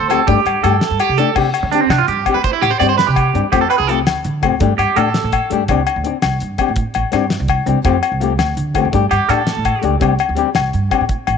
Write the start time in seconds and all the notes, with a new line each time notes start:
Already playing: A4
0.00 D2
0.09 F3 A3 C4 G4 A4, closed hi-hat, low agogo
0.27 G2 A3 D4 G4, kick, closed hi-hat
0.46 G2, closed hi-hat, low agogo
0.63 G2 A3 D4 G4 A4, closed hi-hat, low agogo
0.81 snare, closed hi-hat
0.91 G2
1.00 G4, closed hi-hat, low agogo
1.09 C3
1.17 A3 D4 G4 A4, closed hi-hat
1.35 C3 C4 D4 G4, kick, crash, low agogo
1.54 closed hi-hat, low agogo
1.63 D3, muted clean electric guitar stroke
1.72 C4 D4 G4, closed hi-hat
1.81 C4
1.89 C3 D4, snare, closed hi-hat, low agogo
1.98 F4
2.08 G2 G4, closed hi-hat
2.26 C4 D4 G4, kick, closed hi-hat, low agogo
2.34 A3 B4
2.44 C5, kick, closed hi-hat
2.53 E4
2.61 A2 G4, closed hi-hat, low agogo
2.71 C5
2.79 G2 C4 D4 G4 D5, closed hi-hat, low agogo
2.89 C5
2.98 B4, snare, closed hi-hat
3.07 C3 G4
3.16 kick, closed hi-hat, low agogo
3.33 G2 C4 D4 G4, closed hi-hat
3.52 F2 F3 A3 C4 G4, kick, closed hi-hat, low agogo
3.61 A4
3.70 B4, closed hi-hat, low agogo
3.78 C2 G#4
3.87 F3 A3 C4 G4 A4, closed hi-hat
4.06 D2, snare, closed hi-hat, low agogo
4.25 D3, closed hi-hat
4.42 F3 A3 C4 G4, kick, closed hi-hat, low agogo
4.52 D2
4.60 G2 A3 D4 G4, kick, closed hi-hat
4.78 G2 G4, closed hi-hat, low agogo
4.96 A2 A3 D4 G4 A4, closed hi-hat, low agogo
5.14 snare, closed hi-hat
5.24 A2
5.32 kick, closed hi-hat, low agogo
5.50 G2 A3 D4 G4, closed hi-hat
5.68 C2 C4 D4 G4, kick, closed hi-hat, low agogo
5.87 closed hi-hat, low agogo
5.96 D2
6.04 C4 D4, muted nylon-string guitar stroke, closed hi-hat
6.22 C2, snare, closed hi-hat, low agogo
6.40 G2, closed hi-hat
6.58 C4 D4 G4, kick, closed hi-hat, low agogo
6.68 A2
6.76 kick, closed hi-hat
6.94 A1, closed hi-hat, low agogo
7.12 G2 C4 D4 G4, snare, closed hi-hat, low agogo
7.30 snare, closed hi-hat
7.40 C2
7.48 kick, closed hi-hat, low agogo
7.66 C2 C4 D4 G4, closed hi-hat
7.84 F2 F3 A3 C4 G4, kick, closed hi-hat, low agogo
8.03 closed hi-hat, low agogo
8.12 C2
8.20 F3 A3 C4 G4, closed hi-hat
8.39 D2, snare, closed hi-hat, low agogo
8.57 D3, closed hi-hat
8.74 F3 A3 C4 G4, kick, closed hi-hat, low agogo
8.85 F#2
8.92 G2 A3 D4 G4, kick, closed hi-hat
9.11 G2 G4, closed hi-hat, low agogo
9.28 A2 A3 D4 G4 A4, snare, closed hi-hat, low agogo
9.47 snare, closed hi-hat
9.57 A2
9.65 kick, closed hi-hat, low agogo
9.81 C#2 A3 D4 G4, closed hi-hat
10.00 C2 G3 C4 D4 G4, kick, closed hi-hat, low agogo
10.19 closed hi-hat, low agogo
10.29 D2
10.35 G3 C4 D4 G4, closed hi-hat
10.55 C2, snare, closed hi-hat, low agogo
10.73 G2, closed hi-hat
10.90 G3 C4 D4 G4, kick, closed hi-hat, low agogo
11.01 A2
11.09 kick, closed hi-hat
11.27 A1, closed hi-hat, low agogo